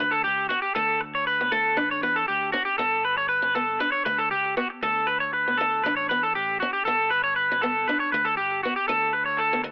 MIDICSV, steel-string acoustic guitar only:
0, 0, Header, 1, 2, 480
1, 0, Start_track
1, 0, Tempo, 508130
1, 718, Time_signature, 4, 2, 24, 8
1, 9178, End_track
2, 0, Start_track
2, 0, Title_t, "Steel-string acoustic guitar"
2, 0, Program_c, 0, 25
2, 0, Note_on_c, 0, 57, 77
2, 157, Note_off_c, 0, 57, 0
2, 475, Note_on_c, 0, 59, 82
2, 636, Note_off_c, 0, 59, 0
2, 714, Note_on_c, 0, 57, 90
2, 876, Note_off_c, 0, 57, 0
2, 1329, Note_on_c, 0, 59, 68
2, 1405, Note_off_c, 0, 59, 0
2, 1436, Note_on_c, 0, 57, 77
2, 1597, Note_off_c, 0, 57, 0
2, 1672, Note_on_c, 0, 62, 89
2, 1834, Note_off_c, 0, 62, 0
2, 1918, Note_on_c, 0, 59, 83
2, 2078, Note_off_c, 0, 59, 0
2, 2394, Note_on_c, 0, 61, 80
2, 2556, Note_off_c, 0, 61, 0
2, 2635, Note_on_c, 0, 59, 98
2, 2797, Note_off_c, 0, 59, 0
2, 3234, Note_on_c, 0, 61, 70
2, 3315, Note_off_c, 0, 61, 0
2, 3358, Note_on_c, 0, 59, 72
2, 3518, Note_off_c, 0, 59, 0
2, 3593, Note_on_c, 0, 62, 88
2, 3755, Note_off_c, 0, 62, 0
2, 3834, Note_on_c, 0, 57, 77
2, 3996, Note_off_c, 0, 57, 0
2, 4318, Note_on_c, 0, 59, 77
2, 4478, Note_off_c, 0, 59, 0
2, 4558, Note_on_c, 0, 57, 88
2, 4719, Note_off_c, 0, 57, 0
2, 5172, Note_on_c, 0, 59, 70
2, 5247, Note_off_c, 0, 59, 0
2, 5297, Note_on_c, 0, 57, 73
2, 5451, Note_off_c, 0, 57, 0
2, 5534, Note_on_c, 0, 62, 92
2, 5689, Note_off_c, 0, 62, 0
2, 5769, Note_on_c, 0, 59, 79
2, 5926, Note_off_c, 0, 59, 0
2, 6257, Note_on_c, 0, 61, 82
2, 6411, Note_off_c, 0, 61, 0
2, 6493, Note_on_c, 0, 59, 89
2, 6649, Note_off_c, 0, 59, 0
2, 7098, Note_on_c, 0, 61, 71
2, 7171, Note_off_c, 0, 61, 0
2, 7209, Note_on_c, 0, 59, 76
2, 7366, Note_off_c, 0, 59, 0
2, 7453, Note_on_c, 0, 62, 90
2, 7608, Note_off_c, 0, 62, 0
2, 7689, Note_on_c, 0, 57, 83
2, 7846, Note_off_c, 0, 57, 0
2, 8174, Note_on_c, 0, 59, 78
2, 8329, Note_off_c, 0, 59, 0
2, 8398, Note_on_c, 0, 57, 99
2, 8558, Note_off_c, 0, 57, 0
2, 9002, Note_on_c, 0, 59, 73
2, 9081, Note_off_c, 0, 59, 0
2, 9106, Note_on_c, 0, 57, 75
2, 9178, Note_off_c, 0, 57, 0
2, 9178, End_track
0, 0, End_of_file